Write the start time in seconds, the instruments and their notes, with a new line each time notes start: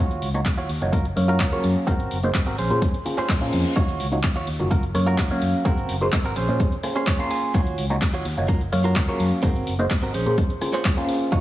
Already playing: clean electric guitar F4
0.00 fingered electric bass D#2, clean electric guitar F#4 C#5
0.11 closed hi-hat
0.22 fingered electric bass C#2, open hi-hat
0.34 reed electric piano A#3 D#4 F4 F#4 C#5, closed hi-hat
0.45 fingered electric bass D#2, kick, clap, closed hi-hat
0.57 clean electric guitar F4 F#4 C#5, closed hi-hat
0.69 fingered electric bass D#2, open hi-hat
0.81 fingered electric bass F#1, reed electric piano A#3 D#4 F4 F#4 C#5, muted clean electric guitar stroke, closed hi-hat
0.92 clean electric guitar F4 F#4 A#4, kick, closed hi-hat
1.05 closed hi-hat
1.16 fingered electric bass F#2, reed electric piano F#3 A#3 C#4 C#5 F5, muted clean electric guitar stroke, open hi-hat
1.28 clean electric guitar F4 F#4 A#4, closed hi-hat
1.40 fingered electric bass F#1, kick, clap, closed hi-hat
1.52 reed electric piano F#3 A#3 C#4 C#5 F5, closed hi-hat
1.64 fingered electric bass F#2, open hi-hat
1.87 fingered electric bass G#1, reed electric piano A#3 D#4 F#4 G#4 C5, clean electric guitar C4 F#4 A#4, kick, closed hi-hat
2.00 closed hi-hat
2.11 fingered electric bass F#1, open hi-hat
2.23 reed electric piano A#3 D#4 F#4 G#4 C5, closed hi-hat
2.34 fingered electric bass G#1, kick, clap, closed hi-hat
2.46 clean electric guitar C4 F#4 A#4, closed hi-hat
2.58 fingered electric bass A#1, clean electric guitar C#4 G#4 C5, open hi-hat
2.70 fingered electric bass A#2, reed electric piano A#3 C#4 F4 G#4 C5, closed hi-hat
2.82 fingered electric bass G#1, kick, closed hi-hat, reverse cymbal
2.94 closed hi-hat
3.05 reed electric piano A#3 C#4 F4 G#4 C5, muted clean electric guitar stroke, open hi-hat
3.17 clean electric guitar C#4 G#4 C5, muted fingered electric bass stroke, clap, closed hi-hat
3.29 fingered electric bass A#2, kick, clap, closed hi-hat
3.41 reed electric piano A#3 C#4 F4 G#4 C5, closed hi-hat
3.53 fingered electric bass F2, open hi-hat
3.65 closed hi-hat
3.76 fingered electric bass D#2, reed electric piano A#3 D#4 F4 F#4 C#5, clean electric guitar F4 F#4 C#5, kick, closed hi-hat, tambourine
3.89 closed hi-hat
4.00 fingered electric bass C#2, open hi-hat, tambourine
4.12 reed electric piano A#3 D#4 F4 F#4 C#5, closed hi-hat, tambourine
4.23 fingered electric bass D#2, kick, clap, closed hi-hat
4.36 clean electric guitar F4 F#4 C#5, closed hi-hat
4.47 fingered electric bass D#2, open hi-hat, tambourine
4.59 fingered electric bass F#1, reed electric piano A#3 D#4 F4 F#4 C#5, muted clean electric guitar stroke, closed hi-hat, tambourine
4.71 clean electric guitar F4 F#4 A#4, kick, closed hi-hat
4.83 closed hi-hat
4.94 fingered electric bass F#2, reed electric piano F#3 A#3 C#4 C#5 F5, muted clean electric guitar stroke, cross-stick, open hi-hat, tambourine
5.06 clean electric guitar F4 F#4 A#4, closed hi-hat, tambourine
5.18 fingered electric bass F#1, kick, clap, closed hi-hat
5.30 reed electric piano F#3 A#3 C#4 C#5 F5, closed hi-hat
5.42 fingered electric bass F#2, open hi-hat, tambourine
5.53 tambourine
5.65 fingered electric bass G#1, reed electric piano A#3 D#4 F#4 G#4 C5, clean electric guitar C4 F#4 A#4, kick, closed hi-hat
5.78 closed hi-hat
5.88 fingered electric bass F#1, open hi-hat, tambourine
6.01 reed electric piano A#3 D#4 F#4 G#4 C5, closed hi-hat, tambourine
6.12 fingered electric bass G#1, kick, clap, closed hi-hat
6.24 clean electric guitar C4 F#4 A#4, closed hi-hat
6.36 fingered electric bass A#1, clean electric guitar C#4 G#4 C5, open hi-hat, tambourine
6.48 fingered electric bass A#2, reed electric piano A#3 C#4 F4 G#4 C5, closed hi-hat, tambourine
6.60 fingered electric bass G#1, kick, closed hi-hat
6.72 closed hi-hat
6.83 reed electric piano A#3 C#4 F4 G#4 C5, muted clean electric guitar stroke, cross-stick, open hi-hat, tambourine
6.95 clean electric guitar C#4 G#4 C5, closed hi-hat
7.07 clean electric guitar C#5, kick, clap, closed hi-hat
7.19 reed electric piano A#3 C#4 F4 G#4 C6, closed hi-hat
7.31 clean electric guitar G#5, open hi-hat, tambourine
7.43 tambourine
7.54 fingered electric bass D#2, reed electric piano A#3 D#4 F4 F#4 C#5, clean electric guitar F4 F#4 C#5, kick, closed hi-hat, tambourine
7.67 closed hi-hat
7.78 fingered electric bass C#2, open hi-hat, tambourine
7.90 reed electric piano A#3 D#4 F4 F#4 C#5, closed hi-hat, tambourine
8.01 fingered electric bass D#2, kick, clap, closed hi-hat
8.13 clean electric guitar F4 F#4 C#5, closed hi-hat
8.25 fingered electric bass D#2, open hi-hat, tambourine
8.37 fingered electric bass F#1, reed electric piano A#3 D#4 F4 F#4 C#5, muted clean electric guitar stroke, closed hi-hat, tambourine
8.48 clean electric guitar F4 F#4 A#4, kick, closed hi-hat
8.61 closed hi-hat
8.72 fingered electric bass F#2, reed electric piano F#3 A#3 C#4 C#5 F5, muted clean electric guitar stroke, cross-stick, open hi-hat, tambourine
8.84 clean electric guitar F4 F#4 A#4, closed hi-hat, tambourine
8.96 fingered electric bass F#1, kick, clap, closed hi-hat
9.08 reed electric piano F#3 A#3 C#4 C#5 F5, closed hi-hat
9.19 fingered electric bass F#2, open hi-hat, tambourine
9.32 tambourine
9.42 fingered electric bass G#1, reed electric piano A#3 D#4 F#4 G#4 C5, clean electric guitar C4 F#4 A#4, kick, closed hi-hat, tambourine
9.56 closed hi-hat
9.67 fingered electric bass F#1, open hi-hat, tambourine
9.79 reed electric piano A#3 D#4 F#4 G#4 C5, closed hi-hat
9.90 fingered electric bass G#1, kick, clap, closed hi-hat
10.02 clean electric guitar C4 F#4 A#4, closed hi-hat
10.14 fingered electric bass A#1, clean electric guitar C#4 G#4 C5, open hi-hat, tambourine
10.26 fingered electric bass A#2, reed electric piano A#3 C#4 F4 G#4 C5, closed hi-hat, tambourine
10.38 fingered electric bass G#1, kick, closed hi-hat
10.50 closed hi-hat
10.61 reed electric piano A#3 C#4 F4 G#4 C5, muted clean electric guitar stroke, cross-stick, open hi-hat, tambourine
10.73 clean electric guitar C#4 G#4 C5, clap, closed hi-hat, tambourine
10.84 kick, clap, closed hi-hat, tambourine
10.97 reed electric piano A#3 C#4 F4 G#4 C5, closed hi-hat
11.09 open hi-hat, tambourine
11.21 tambourine
11.32 fingered electric bass D#2, reed electric piano A#3 D#4 F4 F#4 C#5, clean electric guitar F4 F#4 C#5, kick, closed hi-hat, tambourine